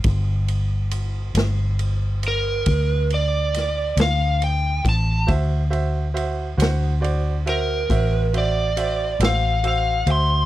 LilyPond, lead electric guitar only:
\new Staff \with { instrumentName = "Lead electric guitar" } { \time 12/8 \key d \dorian \tempo 4. = 46 r2 r8 bes'4 d''4 f''8 g''8 a''8 | r2 r8 bes'4 d''4 f''8 f''8 c'''8 | }